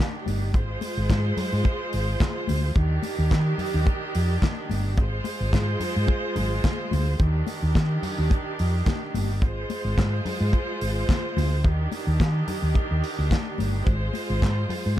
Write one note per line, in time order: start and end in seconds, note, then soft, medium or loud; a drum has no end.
0.00 0.52 D#3 medium
0.00 0.52 D4 medium
0.00 0.52 G4 medium
0.00 snare loud
0.00 clap medium
0.26 0.54 G1 medium
0.26 open hi-hat medium
0.26 high conga medium
0.53 0.76 G#1 medium
0.53 2.73 G#3 medium
0.53 2.73 F4 medium
0.53 2.73 C5 medium
0.53 kick loud
0.53 closed hi-hat medium
0.81 open hi-hat medium
0.81 muted conga medium
0.97 1.07 G#1 medium
1.10 1.31 G#2 loud
1.10 kick loud
1.10 snare loud
1.10 clap loud
1.10 closed hi-hat medium
1.10 high conga medium
1.37 open hi-hat medium
1.37 low conga medium
1.53 1.62 G#2 medium
1.64 kick loud
1.64 closed hi-hat medium
1.64 muted conga medium
1.93 2.15 G#1 medium
1.93 open hi-hat medium
2.20 kick loud
2.20 snare loud
2.20 clap loud
2.20 closed hi-hat medium
2.20 high conga medium
2.48 2.70 D2 medium
2.48 open hi-hat medium
2.48 high conga medium
2.76 2.97 D#2 medium
2.76 4.96 D#3 medium
2.76 4.96 D4 medium
2.76 4.96 G4 medium
2.76 kick loud
2.76 closed hi-hat medium
3.03 open hi-hat medium
3.03 muted conga medium
3.19 3.28 D#2 medium
3.31 3.53 D#3 loud
3.31 kick loud
3.31 snare loud
3.31 clap loud
3.31 closed hi-hat medium
3.31 high conga medium
3.58 open hi-hat medium
3.58 low conga medium
3.74 3.84 D#2 loud
3.86 kick loud
3.86 closed hi-hat medium
3.86 muted conga medium
4.15 4.36 F2 medium
4.15 open hi-hat medium
4.42 kick loud
4.42 snare loud
4.42 clap medium
4.42 closed hi-hat medium
4.42 high conga medium
4.70 4.98 G1 medium
4.70 open hi-hat medium
4.70 high conga medium
4.97 5.19 G#1 medium
4.97 7.17 G#3 medium
4.97 7.17 F4 medium
4.97 7.18 C5 medium
4.97 kick loud
4.97 closed hi-hat medium
4.97 muted conga soft
5.24 open hi-hat medium
5.24 muted conga medium
5.41 5.50 G#1 medium
5.53 5.75 G#2 loud
5.53 kick loud
5.53 snare loud
5.53 clap loud
5.53 closed hi-hat medium
5.53 high conga medium
5.80 open hi-hat medium
5.80 low conga medium
5.96 6.06 G#2 medium
6.07 kick loud
6.07 closed hi-hat medium
6.07 muted conga medium
6.36 6.58 G#1 medium
6.36 open hi-hat medium
6.36 low conga medium
6.64 kick loud
6.64 snare loud
6.64 clap medium
6.64 closed hi-hat medium
6.64 high conga medium
6.91 7.14 D2 loud
6.91 open hi-hat medium
6.91 high conga medium
7.20 7.41 D#2 loud
7.20 9.40 D#3 medium
7.20 9.40 D4 medium
7.20 9.40 G4 medium
7.20 kick loud
7.20 closed hi-hat medium
7.47 open hi-hat medium
7.47 muted conga medium
7.62 7.72 D#2 medium
7.75 7.97 D#3 loud
7.75 kick loud
7.75 snare loud
7.75 clap medium
7.75 closed hi-hat medium
7.75 high conga medium
8.03 open hi-hat medium
8.03 low conga medium
8.19 8.28 D#2 loud
8.30 kick loud
8.30 closed hi-hat medium
8.30 muted conga medium
8.59 8.81 F2 medium
8.59 open hi-hat medium
8.86 kick loud
8.86 snare loud
8.86 clap medium
8.86 closed hi-hat medium
8.86 high conga medium
9.14 9.42 G1 medium
9.14 open hi-hat medium
9.14 high conga medium
9.42 9.64 G#1 loud
9.42 11.62 G#3 medium
9.42 11.62 F4 medium
9.42 11.63 C5 medium
9.42 kick loud
9.42 closed hi-hat medium
9.42 muted conga soft
9.70 open hi-hat medium
9.70 muted conga medium
9.85 9.95 G#1 medium
9.98 10.19 G#2 loud
9.98 kick loud
9.98 snare loud
9.98 clap loud
9.98 closed hi-hat medium
9.98 high conga medium
10.25 open hi-hat medium
10.25 low conga medium
10.41 10.50 G#2 medium
10.53 kick loud
10.53 closed hi-hat medium
10.53 muted conga medium
10.81 11.03 G#1 medium
10.81 open hi-hat medium
11.09 kick loud
11.09 snare loud
11.09 clap loud
11.09 closed hi-hat medium
11.09 high conga medium
11.37 11.65 D2 medium
11.37 open hi-hat medium
11.37 high conga medium
11.64 11.86 D#2 loud
11.64 13.84 D#3 medium
11.64 13.85 D4 medium
11.64 13.84 G4 medium
11.64 kick loud
11.64 closed hi-hat medium
11.64 muted conga soft
11.92 open hi-hat medium
11.92 muted conga soft
12.07 12.17 D#2 medium
12.20 12.42 D#3 medium
12.20 kick loud
12.20 snare loud
12.20 clap medium
12.20 closed hi-hat medium
12.20 high conga medium
12.48 open hi-hat medium
12.48 low conga medium
12.62 12.73 D#2 medium
12.74 kick loud
12.74 closed hi-hat medium
12.74 muted conga medium
12.91 13.01 D#2 medium
13.04 open hi-hat medium
13.19 13.28 D2 medium
13.31 kick loud
13.31 snare loud
13.31 clap medium
13.31 closed hi-hat medium
13.31 high conga medium
13.58 13.81 G1 medium
13.58 open hi-hat medium
13.58 high conga medium
13.86 14.08 G#1 loud
13.86 14.97 G#3 medium
13.86 14.97 F4 medium
13.86 14.97 C5 medium
13.86 kick loud
13.86 closed hi-hat medium
14.14 open hi-hat medium
14.14 muted conga soft
14.30 14.40 G#1 loud
14.42 14.64 G#2 loud
14.42 kick loud
14.42 snare loud
14.42 clap loud
14.42 closed hi-hat medium
14.42 high conga medium
14.69 open hi-hat medium
14.69 low conga medium
14.86 14.96 G#2 medium